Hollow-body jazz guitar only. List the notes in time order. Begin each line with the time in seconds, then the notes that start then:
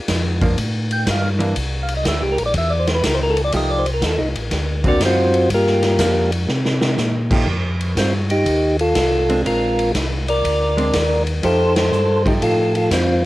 0.42 F3 A#3 D4
1.39 E3 A#3 D4
3.54 F3 A3 D#4 G4
4.85 D3 A#3 C4 F#4
5.99 F3 A#3 D4
7.31 F3 A3 D#4 G4
9.30 G#3 C4 D4
10.77 G#3 C4 D4
11.43 F3 A3 D#4 G4
12.25 F3 A3 D#4 G4